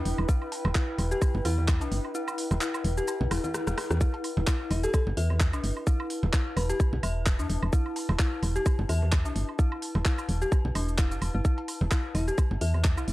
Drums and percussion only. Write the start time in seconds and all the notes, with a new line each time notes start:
0.05 open hi-hat
0.18 high woodblock
0.29 kick, cabasa
0.42 high woodblock
0.52 open hi-hat, cowbell
0.65 low conga, high woodblock
0.75 kick, clap, cabasa
0.99 open hi-hat, high conga, high woodblock
1.12 cabasa
1.22 kick, cabasa, high woodblock
1.35 low conga
1.45 open hi-hat, high woodblock
1.58 high conga
1.68 kick, clap, cabasa, high woodblock
1.81 cowbell, cabasa
1.92 open hi-hat
2.04 high woodblock
2.15 cabasa
2.28 cabasa, high woodblock
2.38 open hi-hat
2.51 low conga, cabasa, high woodblock
2.61 clap, cabasa
2.74 cabasa, high woodblock
2.84 open hi-hat, high conga
2.98 cabasa
3.08 cowbell, cabasa, high woodblock
3.21 low conga
3.31 cross-stick, open hi-hat, high woodblock
3.44 high conga, cabasa
3.54 cross-stick, cabasa, high woodblock
3.67 cross-stick, cabasa
3.78 cross-stick, open hi-hat, high woodblock
3.91 cross-stick, cabasa
4.01 kick, cabasa
4.14 cowbell
4.24 open hi-hat, high woodblock
4.37 low conga
4.47 kick, clap, cabasa, high woodblock
4.71 open hi-hat, high conga, high woodblock
4.83 cabasa
4.94 kick, cabasa, high woodblock
5.07 low conga
5.17 open hi-hat
5.30 high conga, high woodblock
5.40 kick, clap, cowbell, cabasa
5.53 cabasa, high woodblock
5.64 open hi-hat
5.77 high woodblock
5.87 kick, cabasa
6.00 high woodblock
6.10 open hi-hat
6.23 low conga
6.33 kick, clap, cabasa, high woodblock
6.57 open hi-hat, high conga, high woodblock
6.70 cowbell, cabasa
6.80 kick, cabasa, high woodblock
6.93 low conga
7.03 open hi-hat, high woodblock
7.26 kick, clap, cabasa
7.39 cabasa, high woodblock
7.50 open hi-hat
7.63 high woodblock
7.73 kick, cabasa
7.86 high woodblock
7.96 open hi-hat, cowbell
8.09 low conga, high woodblock
8.19 kick, clap, cabasa
8.43 open hi-hat, high conga, high woodblock
8.56 cabasa
8.66 kick, cabasa, high woodblock
8.79 low conga
8.89 open hi-hat, high woodblock
9.02 high conga
9.12 kick, clap, cabasa, high woodblock
9.25 cowbell, cabasa
9.36 open hi-hat
9.49 high woodblock
9.59 kick, cabasa
9.72 high woodblock
9.82 open hi-hat
9.95 low conga, high woodblock
10.05 kick, clap, cabasa
10.18 cabasa, high woodblock
10.29 open hi-hat, high conga
10.42 cabasa
10.52 kick, cowbell, cabasa, high woodblock
10.65 low conga
10.75 open hi-hat, high woodblock
10.88 cabasa
10.98 kick, clap, cabasa, high woodblock
11.11 cabasa
11.22 open hi-hat, high woodblock
11.45 kick, cabasa
11.58 cowbell
11.68 open hi-hat, high woodblock
11.81 low conga
11.91 kick, clap, cabasa, high woodblock
12.15 open hi-hat, high conga, high woodblock
12.28 cabasa
12.38 kick, cabasa, high woodblock
12.51 low conga
12.61 open hi-hat
12.74 high conga, high woodblock
12.84 kick, clap, cowbell, cabasa
12.97 cabasa, high woodblock
13.08 open hi-hat